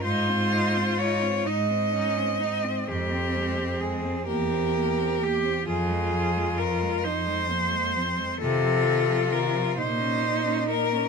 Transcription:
X:1
M:6/8
L:1/16
Q:3/8=43
K:Fm
V:1 name="Cello"
c4 d2 e6 | G4 A2 B4 G2 | A4 B2 c6 | =A4 B2 c4 B2 |]
V:2 name="Cello"
F6 E2 D2 C2- | C6 G6 | F6 E2 B,2 C2 | F6 E6 |]
V:3 name="Cello"
E C E C E C E C E C E C | A, C A, C A, C B, C B, C B, C | F, A, F, A, F, A, F, A, F, A, F, A, | E, F, E, F, E, F, B, D B, D B, D |]
V:4 name="Cello" clef=bass
A,,6 A,,6 | F,,6 =E,,6 | F,,6 F,,6 | C,6 B,,6 |]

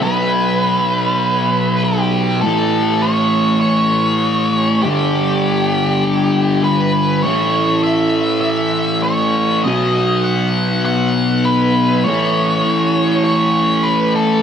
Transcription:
X:1
M:4/4
L:1/8
Q:1/4=100
K:Amix
V:1 name="Lead electric guitar"
B6 G2 | A2 c2 c4 | G6 B2 | c2 e2 e2 c2 |
^d2 f2 f2 B2 | c4 c2 B A |]
V:2 name="Distorted electric guitar" clef=bass
[B,,F,B,]8 | [A,,E,A,]8 | [G,,D,G,]8 | [A,,E,A,]8 |
[B,,F,B,]8 | [A,,E,A,]8 |]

